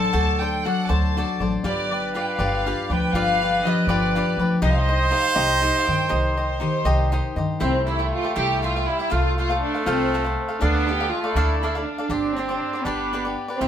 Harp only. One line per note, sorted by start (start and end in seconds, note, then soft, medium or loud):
0.00 0.64 F#3 medium
0.00 0.41 D4 medium
0.00 1.24 D5 loud
0.41 1.15 D4 medium
0.65 1.38 F#3 medium
1.16 1.91 D4 medium
1.39 1.70 F#3 medium
1.63 2.38 D5 medium
1.91 2.66 D4 medium
2.39 4.23 D5 medium
2.66 3.40 D4 medium
2.90 3.63 F3 medium
3.40 4.15 D4 medium
3.65 4.37 F3 medium
4.16 4.68 D4 medium
4.39 4.67 F3 medium
4.62 5.36 D#6 loud
4.90 5.63 D#4 medium
5.37 6.54 D#6 medium
5.64 6.37 D#4 medium
5.88 6.61 D#3 medium
6.38 7.13 D#4 medium
6.62 7.37 D#3 medium
7.14 9.84 D#4 medium
7.38 7.67 D#3 medium